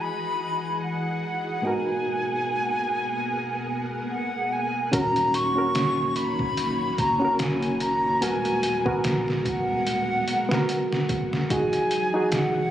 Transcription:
Already playing: E3 B3 D#4 F#4 G#4 D#5 F#5
0.01 B5
0.83 F#5
1.62 G#2 B3 D#4 F#4 A#4 G#5
1.67 A#4
4.12 F#5
4.53 G#5
4.92 D#1 A#3 C#4 D#4 F#4 A#4 C#5 A#5, kick, closed hi-hat
5.16 closed hi-hat
5.34 C#6, closed hi-hat
5.56 C#4 F#4 A#4
5.75 snare, closed hi-hat
6.16 E1 B5, closed hi-hat
6.39 kick
6.57 closed hi-hat
6.98 F#1 A#5, kick, closed hi-hat
7.19 C#4 F#4
7.25 A#4
7.39 G#5, snare, closed hi-hat
7.62 closed hi-hat
7.80 A#5, closed hi-hat
8.21 D#1 G#3 B3 F#4 A#4 G#5, closed hi-hat
8.45 closed hi-hat
8.63 closed hi-hat
8.86 B3 F#4 A#4, kick
9.04 A#1, snare, closed hi-hat
9.28 snare
9.45 D#1 F#5, kick, closed hi-hat
9.87 closed hi-hat
10.28 closed hi-hat
10.49 B3 F#4, snare
10.54 A#4
10.69 closed hi-hat
10.93 snare
11.09 kick, closed hi-hat
11.33 snare
11.49 E3 F#3 D#4 F#4 G#4 G#5, kick, closed hi-hat
11.73 closed hi-hat
11.91 closed hi-hat
12.14 D#4 F#4 G#4
12.31 E1 F#5, snare, closed hi-hat

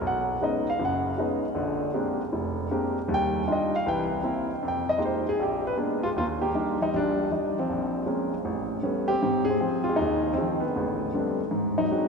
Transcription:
0.01 B1
0.07 F#5
0.41 G#3 B3 C#4 D#4 D#5
0.70 F5
0.79 F#1 F#2
0.85 F#5
1.18 G#3 B3 C#4 D#4
1.55 A#1 D3
1.94 G#3 A#3 C4 D4 G4
2.33 F1
2.71 G#3 A#3 C4 D4 G4
3.08 D#2 G3
3.14 G5
3.47 G3 D4 D#4 F4
3.52 D#5
3.76 F5
3.86 C2 E3 G5
4.23 A#3 C4 E4
4.63 F2
4.68 G5
4.89 D#5
4.98 G#3 A#3 D#4 F4 G4
5.05 C5
5.29 G#4
5.40 A#1 G4
5.67 B4
5.77 G#3 A#3 B3 D4
6.03 G#3 F4
6.16 D#2 A#3 F4
6.41 A#3 G4
6.55 G3 D4 D#4
6.82 G3 D#4
6.94 A#1 G3 D4
7.31 G3 D4 D#4
7.59 F3 C4
7.70 A#1
8.06 G#3 A#3 C4 C#4
8.45 A1
8.83 G3 A3 B3 C#4
9.08 C4 G4
9.22 G#2 C4
9.45 G#4
9.49 C4
9.60 F3 G#3 C4
9.84 F4
9.89 G#3
9.96 D#2 D#4
10.02 G#3
10.34 G#3 C4
10.38 D#3 F3 C4
10.60 B3
10.65 D3
10.76 A1
11.14 G3 A3 B3 C4 D4
11.51 G#2
11.78 F#3 D#4
11.91 G#3 C4 D4 F#4

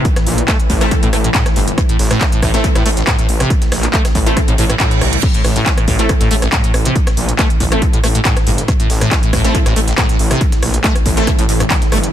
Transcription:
Already playing: A2 E3
0.05 A2, kick, closed hi-hat
0.16 cross-stick, snare, closed hi-hat
0.27 A#1, closed hi-hat, open hi-hat
0.38 closed hi-hat
0.48 A3, kick, cross-stick, snare, clap, closed hi-hat
0.60 closed hi-hat
0.70 A1 A2, kick, closed hi-hat, open hi-hat
0.81 A3 C4 E4 A4, cross-stick, closed hi-hat
0.91 A2, kick, closed hi-hat
1.03 A1 A2, closed hi-hat
1.13 A1 A3, cross-stick, closed hi-hat, open hi-hat
1.24 A2, closed hi-hat
1.34 A2, kick, snare, clap, closed hi-hat
1.46 cross-stick, snare, closed hi-hat
1.56 G1 A2, closed hi-hat, open hi-hat
1.68 closed hi-hat
1.78 A2, kick, cross-stick, closed hi-hat
1.89 A2, closed hi-hat
1.99 A1, snare, open hi-hat
2.11 A2, cross-stick, closed hi-hat
2.21 kick, snare, clap, closed hi-hat
2.32 A2, closed hi-hat
2.42 A1 A2, kick, cross-stick, closed hi-hat, open hi-hat
2.54 A3 C4 E4 A4, snare, closed hi-hat
2.64 A2, kick, closed hi-hat
2.75 A1 A2, cross-stick, snare, closed hi-hat
2.86 A1 A3, closed hi-hat, open hi-hat
2.97 A1, snare, closed hi-hat
3.07 A2, kick, cross-stick, snare, clap, closed hi-hat
3.19 A2, closed hi-hat
3.29 A1, closed hi-hat, open hi-hat
3.40 C3, cross-stick, closed hi-hat
3.50 A2, kick, closed hi-hat
3.62 snare, closed hi-hat
3.72 A#1, cross-stick, snare, closed hi-hat, open hi-hat
3.83 clap, closed hi-hat
3.93 A3, kick, clap, closed hi-hat
4.05 cross-stick, snare, closed hi-hat
4.15 A1 A2, kick, open hi-hat
4.26 A3 C4 E4 A4, closed hi-hat
4.37 A2, kick, cross-stick, closed hi-hat, reverse cymbal
4.48 A1 A2, closed hi-hat
4.58 A1 A2, closed hi-hat, open hi-hat
4.70 A2, cross-stick, closed hi-hat
4.80 A2, kick, snare, clap, closed hi-hat
4.91 snare, closed hi-hat
5.01 C2 A3, cross-stick, closed hi-hat, open hi-hat
5.13 closed hi-hat
5.23 A2 E3, kick, closed hi-hat, crash
5.34 A2, closed hi-hat
5.44 A1, cross-stick, snare, open hi-hat
5.56 A2, closed hi-hat
5.66 kick, snare, clap, closed hi-hat
5.78 A2, cross-stick, closed hi-hat
5.88 A1 A2, kick, closed hi-hat, open hi-hat
5.99 A3 C4 E4 A4, snare, closed hi-hat
6.09 A2, kick, cross-stick, closed hi-hat
6.21 A1 A2, snare, closed hi-hat
6.31 A1 A3, closed hi-hat, open hi-hat
6.42 A1, cross-stick, snare, closed hi-hat
6.52 A2, kick, snare, clap, closed hi-hat
6.64 A2, closed hi-hat
6.74 A1, cross-stick, closed hi-hat, open hi-hat
6.85 C3, closed hi-hat
6.96 A2, kick, closed hi-hat
7.07 cross-stick, snare, closed hi-hat
7.17 A#1, closed hi-hat, open hi-hat
7.29 closed hi-hat
7.39 A3, kick, cross-stick, snare, clap, closed hi-hat
7.50 closed hi-hat
7.60 A1 A2, kick, closed hi-hat, open hi-hat
7.72 A3 C4 E4 A4, cross-stick, closed hi-hat
7.82 A2, kick, closed hi-hat
7.93 A1 A2, closed hi-hat
8.04 A1 A3, cross-stick, closed hi-hat, open hi-hat
8.15 A2, closed hi-hat
8.25 A2, kick, snare, clap, closed hi-hat
8.36 cross-stick, snare, closed hi-hat
8.47 G1 A2, closed hi-hat, open hi-hat
8.58 closed hi-hat
8.68 A2, kick, cross-stick, closed hi-hat
8.80 A2, closed hi-hat
8.90 A1, snare, open hi-hat
9.01 A2, cross-stick, closed hi-hat
9.11 kick, snare, clap, closed hi-hat
9.23 A2, closed hi-hat
9.33 A1 A2, kick, cross-stick, closed hi-hat, open hi-hat
9.44 A3 C4 E4 A4, snare, closed hi-hat
9.55 A2, kick, closed hi-hat
9.66 A1 A2, cross-stick, snare, closed hi-hat
9.76 A1 A3, closed hi-hat, open hi-hat
9.88 A1, snare, closed hi-hat
9.98 A2, kick, cross-stick, snare, clap, closed hi-hat
10.09 A2, closed hi-hat
10.19 A1, closed hi-hat, open hi-hat
10.31 C3, cross-stick, closed hi-hat
10.41 A2, kick, closed hi-hat
10.52 snare, closed hi-hat
10.62 A#1, cross-stick, closed hi-hat, open hi-hat
10.74 closed hi-hat
10.84 A3, kick, snare, clap, closed hi-hat
10.96 cross-stick, closed hi-hat
11.06 A1 A2, kick, closed hi-hat, open hi-hat
11.17 A3 C4 E4 A4, closed hi-hat
11.27 A2, kick, cross-stick, closed hi-hat
11.39 A1 A2, closed hi-hat
11.49 A1 A2, closed hi-hat, open hi-hat
11.60 G2, cross-stick, closed hi-hat
11.70 E3, kick, snare, clap, closed hi-hat
11.82 snare, closed hi-hat
11.92 G1 A3, cross-stick, closed hi-hat, open hi-hat
12.03 closed hi-hat

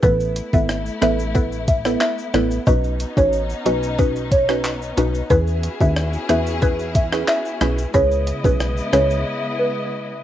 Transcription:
0.03 A1 A3 B3 E4 A4 B4, kick, shaker
0.21 shaker
0.36 closed hi-hat, shaker
0.53 G#1 B3 E4 A4 B4 E5, kick, shaker
0.69 cross-stick, shaker
0.86 shaker
1.02 A1 B3 E4 A4 B4 E5, cross-stick, closed hi-hat, shaker
1.20 shaker
1.35 B3 E4 A4 B4, kick, shaker
1.52 shaker
1.68 E5, kick, closed hi-hat, shaker
1.85 B3 E4 A4 B4, cross-stick, shaker
2.01 E5, cross-stick, clap, shaker
2.19 shaker
2.34 A1 B3 E4 A4 B4, cross-stick, closed hi-hat, shaker
2.51 shaker
2.67 B1 C#4 D#4 F#4 B4 D#5, kick, shaker
2.84 shaker
3.00 closed hi-hat, shaker
3.17 A1 C#4 D#4 F#4 B4 C#5, kick, shaker
3.33 shaker
3.50 shaker
3.65 B1 C#4 D#4 F#4 B4 D#5, closed hi-hat, shaker
3.83 shaker
3.98 C#4 D#4 F#4 B4, kick, shaker
4.16 shaker
4.32 C#5, kick, closed hi-hat, shaker
4.49 C#4 D#4 F#4 B4, cross-stick, shaker
4.64 clap, shaker
4.82 shaker
4.97 B1 C#4 D#4 F#4 B4, closed hi-hat, high timbale, shaker
5.15 shaker
5.30 E2 C#4 E4 F#4 G#4 B4, kick, shaker
5.48 shaker
5.63 closed hi-hat, shaker
5.81 D#2 C#4 E4 G#4 B4 E5, kick, shaker
5.96 cross-stick, shaker
6.14 shaker
6.29 E2 C#4 E4 G#4 B4 E5, cross-stick, closed hi-hat, shaker
6.47 shaker
6.62 C#4 E4 G#4 B4, kick, shaker
6.80 shaker
6.95 E5, kick, closed hi-hat, shaker
7.12 C#4 E4 G#4 B4, cross-stick, shaker
7.28 E5, cross-stick, clap, shaker
7.46 shaker
7.61 B1 C#4 E4 G#4 B4, cross-stick, closed hi-hat, shaker
7.78 shaker
7.94 C#2 C#3 G#3 B3 C#4 E4 G#4 B4 C#5 D#5, kick, shaker
8.12 shaker
8.27 closed hi-hat, shaker
8.44 B1 C#4 E4 G#4 B4, kick, shaker
8.60 cross-stick, shaker
8.78 shaker
8.93 C#2 C#4 E4 G#4 B4 C#5, cross-stick, closed hi-hat, shaker
9.10 shaker
9.59 B4

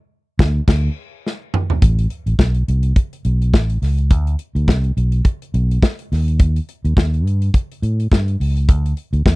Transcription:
0.39 D2, kick, snare
0.68 D2, kick, snare, crash
1.27 snare
1.54 mid tom
1.70 floor tom
1.82 A1, kick, closed hi-hat
1.99 closed hi-hat
2.10 closed hi-hat
2.26 A1, closed hi-hat
2.39 B1, kick, snare
2.55 closed hi-hat
2.68 C2, closed hi-hat
2.83 closed hi-hat
2.96 kick, closed hi-hat
3.13 closed hi-hat
3.25 B1, closed hi-hat
3.42 closed hi-hat
3.54 A1, kick, snare
3.70 closed hi-hat
3.82 C#2, snare, open hi-hat
3.98 closed hi-hat
4.11 D2, kick, closed hi-hat
4.27 closed hi-hat
4.39 closed hi-hat
4.55 D2, closed hi-hat
4.68 C2, kick, snare
4.84 closed hi-hat
4.97 B1, closed hi-hat
5.12 closed hi-hat
5.25 kick, closed hi-hat
5.42 closed hi-hat
5.54 B1, closed hi-hat
5.71 closed hi-hat
5.82 kick, snare
5.99 closed hi-hat
6.12 D#2, snare, open hi-hat
6.28 closed hi-hat
6.39 kick, closed hi-hat
6.56 closed hi-hat
6.69 closed hi-hat
6.85 D#2, closed hi-hat
6.97 D#2, kick, snare
7.14 closed hi-hat
7.25 G2, closed hi-hat
7.42 closed hi-hat
7.54 kick, closed hi-hat
7.72 closed hi-hat
7.82 A2, closed hi-hat
8.00 closed hi-hat
8.12 G2, kick, snare
8.28 closed hi-hat
8.40 C#2, open hi-hat
8.57 closed hi-hat
8.69 D2, kick, closed hi-hat
8.86 closed hi-hat
8.97 closed hi-hat
9.13 D2, closed hi-hat
9.26 E2, kick, snare

